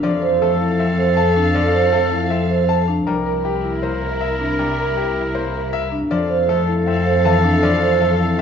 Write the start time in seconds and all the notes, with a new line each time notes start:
Already playing: E3
0.03 F2 F3 A4 D5 F5
0.22 C5
0.41 A3 A4
0.60 E4
0.79 C4 E5
0.98 C5
1.17 A5
1.36 D4
1.54 F3 D5
1.74 C5
1.93 A3 A4
2.12 E4
2.30 C4 E5
2.50 C5
2.69 A5
2.88 D4
3.07 C2 G3 E4 A#4
3.26 A#4
3.45 G4
3.64 E4
3.83 A#3 C5
4.02 A#4
4.21 E5
4.40 D4
4.59 G3 A#4
4.78 A#4
4.97 G4
5.16 E4
5.35 A#3 C5
5.54 A#4
5.73 E5
5.92 D4
6.11 F2 F3 A4 D5 F5
6.30 C5
6.49 A3 A4
6.68 E4
6.87 C4 E5
7.06 C5
7.25 E3 A5
7.44 D4
7.63 F3 D5
7.82 C5
8.00 A3 A4
8.20 E4